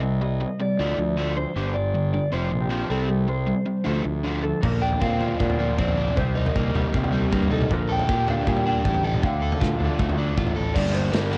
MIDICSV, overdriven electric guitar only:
0, 0, Header, 1, 2, 480
1, 0, Start_track
1, 0, Key_signature, -2, "minor"
1, 0, Tempo, 383387
1, 24, Time_signature, 4, 2, 24, 8
1, 14244, End_track
2, 0, Start_track
2, 0, Title_t, "Overdriven electric guitar"
2, 0, Program_c, 0, 29
2, 28, Note_on_c, 0, 48, 61
2, 38, Note_on_c, 0, 55, 65
2, 243, Note_off_c, 0, 48, 0
2, 248, Note_off_c, 0, 55, 0
2, 269, Note_on_c, 0, 48, 55
2, 276, Note_on_c, 0, 55, 63
2, 483, Note_off_c, 0, 48, 0
2, 487, Note_off_c, 0, 55, 0
2, 509, Note_on_c, 0, 48, 67
2, 517, Note_on_c, 0, 55, 75
2, 724, Note_off_c, 0, 48, 0
2, 727, Note_off_c, 0, 55, 0
2, 750, Note_on_c, 0, 48, 57
2, 757, Note_on_c, 0, 55, 71
2, 964, Note_off_c, 0, 48, 0
2, 968, Note_off_c, 0, 55, 0
2, 991, Note_on_c, 0, 50, 71
2, 999, Note_on_c, 0, 53, 73
2, 1006, Note_on_c, 0, 57, 78
2, 1210, Note_off_c, 0, 50, 0
2, 1215, Note_off_c, 0, 53, 0
2, 1222, Note_off_c, 0, 57, 0
2, 1225, Note_on_c, 0, 50, 64
2, 1230, Note_on_c, 0, 53, 70
2, 1443, Note_off_c, 0, 50, 0
2, 1445, Note_off_c, 0, 53, 0
2, 1464, Note_on_c, 0, 50, 73
2, 1475, Note_on_c, 0, 53, 79
2, 1484, Note_on_c, 0, 57, 88
2, 1692, Note_off_c, 0, 50, 0
2, 1698, Note_off_c, 0, 53, 0
2, 1702, Note_off_c, 0, 57, 0
2, 1718, Note_on_c, 0, 50, 68
2, 1719, Note_on_c, 0, 53, 72
2, 1930, Note_off_c, 0, 50, 0
2, 1931, Note_off_c, 0, 53, 0
2, 1952, Note_on_c, 0, 43, 68
2, 1960, Note_on_c, 0, 50, 76
2, 1965, Note_on_c, 0, 55, 76
2, 2177, Note_off_c, 0, 43, 0
2, 2181, Note_off_c, 0, 50, 0
2, 2184, Note_off_c, 0, 55, 0
2, 2196, Note_on_c, 0, 43, 51
2, 2202, Note_on_c, 0, 50, 69
2, 2410, Note_off_c, 0, 43, 0
2, 2413, Note_off_c, 0, 50, 0
2, 2431, Note_on_c, 0, 43, 60
2, 2438, Note_on_c, 0, 50, 66
2, 2648, Note_off_c, 0, 43, 0
2, 2651, Note_off_c, 0, 50, 0
2, 2676, Note_on_c, 0, 43, 58
2, 2681, Note_on_c, 0, 50, 65
2, 2891, Note_off_c, 0, 43, 0
2, 2893, Note_off_c, 0, 50, 0
2, 2906, Note_on_c, 0, 41, 68
2, 2912, Note_on_c, 0, 48, 76
2, 2922, Note_on_c, 0, 53, 77
2, 3126, Note_off_c, 0, 41, 0
2, 3134, Note_off_c, 0, 48, 0
2, 3142, Note_on_c, 0, 41, 58
2, 3143, Note_off_c, 0, 53, 0
2, 3149, Note_on_c, 0, 48, 68
2, 3364, Note_off_c, 0, 41, 0
2, 3368, Note_off_c, 0, 48, 0
2, 3379, Note_on_c, 0, 41, 80
2, 3390, Note_on_c, 0, 48, 86
2, 3396, Note_on_c, 0, 53, 85
2, 3613, Note_off_c, 0, 41, 0
2, 3614, Note_off_c, 0, 48, 0
2, 3621, Note_off_c, 0, 53, 0
2, 3629, Note_on_c, 0, 48, 76
2, 3635, Note_on_c, 0, 55, 90
2, 3644, Note_on_c, 0, 60, 88
2, 3847, Note_off_c, 0, 48, 0
2, 3853, Note_off_c, 0, 55, 0
2, 3862, Note_on_c, 0, 48, 54
2, 3865, Note_off_c, 0, 60, 0
2, 3868, Note_on_c, 0, 55, 62
2, 4085, Note_off_c, 0, 48, 0
2, 4088, Note_off_c, 0, 55, 0
2, 4105, Note_on_c, 0, 48, 54
2, 4110, Note_on_c, 0, 55, 63
2, 4327, Note_off_c, 0, 48, 0
2, 4330, Note_off_c, 0, 55, 0
2, 4343, Note_on_c, 0, 48, 60
2, 4355, Note_on_c, 0, 55, 75
2, 4567, Note_off_c, 0, 48, 0
2, 4569, Note_off_c, 0, 55, 0
2, 4582, Note_on_c, 0, 48, 57
2, 4584, Note_on_c, 0, 55, 72
2, 4806, Note_off_c, 0, 48, 0
2, 4807, Note_off_c, 0, 55, 0
2, 4811, Note_on_c, 0, 50, 67
2, 4824, Note_on_c, 0, 53, 84
2, 4826, Note_on_c, 0, 57, 90
2, 5038, Note_off_c, 0, 50, 0
2, 5044, Note_off_c, 0, 53, 0
2, 5053, Note_on_c, 0, 50, 58
2, 5058, Note_off_c, 0, 57, 0
2, 5059, Note_on_c, 0, 53, 65
2, 5282, Note_off_c, 0, 50, 0
2, 5285, Note_off_c, 0, 53, 0
2, 5302, Note_on_c, 0, 50, 83
2, 5313, Note_on_c, 0, 53, 78
2, 5320, Note_on_c, 0, 57, 80
2, 5533, Note_off_c, 0, 50, 0
2, 5542, Note_off_c, 0, 53, 0
2, 5545, Note_off_c, 0, 57, 0
2, 5548, Note_on_c, 0, 50, 61
2, 5555, Note_on_c, 0, 53, 68
2, 5770, Note_off_c, 0, 50, 0
2, 5774, Note_off_c, 0, 53, 0
2, 5787, Note_on_c, 0, 46, 57
2, 6025, Note_on_c, 0, 62, 67
2, 6262, Note_on_c, 0, 60, 65
2, 6508, Note_on_c, 0, 53, 65
2, 6757, Note_on_c, 0, 50, 66
2, 6987, Note_off_c, 0, 53, 0
2, 6995, Note_off_c, 0, 46, 0
2, 7002, Note_on_c, 0, 53, 67
2, 7228, Note_off_c, 0, 60, 0
2, 7234, Note_off_c, 0, 62, 0
2, 7243, Note_on_c, 0, 60, 67
2, 7484, Note_on_c, 0, 62, 75
2, 7715, Note_off_c, 0, 50, 0
2, 7720, Note_on_c, 0, 48, 65
2, 7722, Note_off_c, 0, 53, 0
2, 7723, Note_off_c, 0, 60, 0
2, 7723, Note_off_c, 0, 62, 0
2, 7954, Note_on_c, 0, 63, 60
2, 8207, Note_on_c, 0, 58, 66
2, 8444, Note_on_c, 0, 55, 69
2, 8665, Note_off_c, 0, 48, 0
2, 8680, Note_on_c, 0, 48, 63
2, 8902, Note_off_c, 0, 55, 0
2, 8917, Note_on_c, 0, 55, 65
2, 9143, Note_off_c, 0, 58, 0
2, 9157, Note_off_c, 0, 63, 0
2, 9158, Note_on_c, 0, 58, 68
2, 9395, Note_on_c, 0, 63, 76
2, 9626, Note_on_c, 0, 46, 65
2, 9638, Note_off_c, 0, 55, 0
2, 9638, Note_off_c, 0, 63, 0
2, 9639, Note_off_c, 0, 58, 0
2, 9640, Note_off_c, 0, 48, 0
2, 9874, Note_on_c, 0, 69, 70
2, 10120, Note_on_c, 0, 67, 72
2, 10358, Note_on_c, 0, 62, 71
2, 10600, Note_on_c, 0, 55, 67
2, 10831, Note_off_c, 0, 46, 0
2, 10836, Note_off_c, 0, 62, 0
2, 10841, Note_on_c, 0, 62, 70
2, 11064, Note_off_c, 0, 67, 0
2, 11074, Note_off_c, 0, 69, 0
2, 11079, Note_on_c, 0, 67, 69
2, 11318, Note_on_c, 0, 69, 78
2, 11556, Note_off_c, 0, 55, 0
2, 11556, Note_off_c, 0, 67, 0
2, 11556, Note_off_c, 0, 69, 0
2, 11557, Note_on_c, 0, 50, 69
2, 11792, Note_on_c, 0, 69, 68
2, 12022, Note_on_c, 0, 65, 69
2, 12246, Note_off_c, 0, 62, 0
2, 12251, Note_on_c, 0, 62, 66
2, 12501, Note_on_c, 0, 57, 61
2, 12729, Note_off_c, 0, 62, 0
2, 12744, Note_on_c, 0, 62, 66
2, 12750, Note_off_c, 0, 50, 0
2, 12971, Note_off_c, 0, 65, 0
2, 12986, Note_on_c, 0, 65, 70
2, 12987, Note_off_c, 0, 69, 0
2, 13219, Note_on_c, 0, 69, 79
2, 13448, Note_on_c, 0, 43, 82
2, 13456, Note_off_c, 0, 57, 0
2, 13457, Note_off_c, 0, 62, 0
2, 13458, Note_on_c, 0, 50, 84
2, 13461, Note_off_c, 0, 69, 0
2, 13461, Note_on_c, 0, 55, 90
2, 13464, Note_off_c, 0, 65, 0
2, 13466, Note_on_c, 0, 58, 89
2, 13472, Note_on_c, 0, 62, 101
2, 13916, Note_off_c, 0, 43, 0
2, 13917, Note_off_c, 0, 50, 0
2, 13921, Note_on_c, 0, 43, 94
2, 13931, Note_off_c, 0, 55, 0
2, 13932, Note_on_c, 0, 50, 93
2, 13936, Note_on_c, 0, 55, 92
2, 13939, Note_off_c, 0, 58, 0
2, 13944, Note_on_c, 0, 58, 86
2, 13945, Note_off_c, 0, 62, 0
2, 13950, Note_on_c, 0, 62, 100
2, 14154, Note_off_c, 0, 50, 0
2, 14158, Note_off_c, 0, 43, 0
2, 14163, Note_on_c, 0, 43, 80
2, 14169, Note_on_c, 0, 50, 85
2, 14173, Note_off_c, 0, 58, 0
2, 14174, Note_off_c, 0, 55, 0
2, 14178, Note_on_c, 0, 58, 86
2, 14179, Note_off_c, 0, 62, 0
2, 14179, Note_on_c, 0, 55, 92
2, 14184, Note_on_c, 0, 62, 88
2, 14244, Note_off_c, 0, 43, 0
2, 14244, Note_off_c, 0, 50, 0
2, 14244, Note_off_c, 0, 55, 0
2, 14244, Note_off_c, 0, 58, 0
2, 14244, Note_off_c, 0, 62, 0
2, 14244, End_track
0, 0, End_of_file